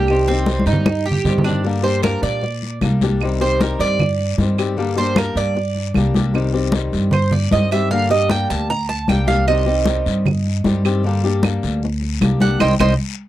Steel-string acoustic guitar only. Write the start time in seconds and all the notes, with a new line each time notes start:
0.10 C3 D#3 G3 C4 G4
0.29 D#3 G3 C4 G4
0.48 D#3 G3 C4 G4
0.88 muted steel-string acoustic guitar stroke
1.26 D#3 G3 C4 G4
1.46 D#3 G3 C4 G4
1.64 D3 G3 A#3 D4 G4
1.83 G3 A#3 D4 G4
2.04 G3 A#3 D4 G4
2.43 muted steel-string acoustic guitar stroke
2.82 G3 A#3 D4 G4
3.03 G3 A#3 D4 G4
3.22 C3 D#3 G3 C4 G4
3.41 D#3 G3 C4 G4
3.61 D#3 G3 C4 G4
4.01 muted steel-string acoustic guitar stroke
4.40 D#3 G3 C4 G4
4.59 D#3 G3 C4 G4
4.77 D3 G3 A#3 D4 G4
4.96 G3 A#3 D4 G4
5.16 G3 A#3 D4 G4
5.56 muted steel-string acoustic guitar stroke
5.96 G3 A#3 D4 G4
6.15 G3 A#3 D4 G4
6.34 C3 D#3 G3 C4 G4
6.54 D#3 G3 C4 G4
6.74 D#3 G3 C4 G4
7.13 muted steel-string acoustic guitar stroke
7.52 D#3 G3 C4 G4
7.72 D#3 G3 C4 G4
7.91 D3 G3 A#3 D4 G4
8.10 G3 A#3 D4 G4
8.31 G3 A#3 D4 G4
8.70 muted steel-string acoustic guitar stroke
9.09 G3 A#3 D4 G4
9.27 G3 A#3 D4 G4
9.47 C3 D#3 G3 C4 G4
9.66 D#3 G3 C4 G4
9.86 D#3 G3 C4 G4
10.26 muted steel-string acoustic guitar stroke
10.65 D#3 G3 C4 G4
10.85 D#3 G3 C4 G4
11.04 D3 G3 A#3 D4 G4
11.24 G3 A#3 D4 G4
11.44 G3 A#3 D4 G4
11.84 muted steel-string acoustic guitar stroke
12.22 G3 A#3 D4 G4
12.41 G3 A#3 D4 G4
12.61 D#3 G3 C4
12.80 D#3 G3 C4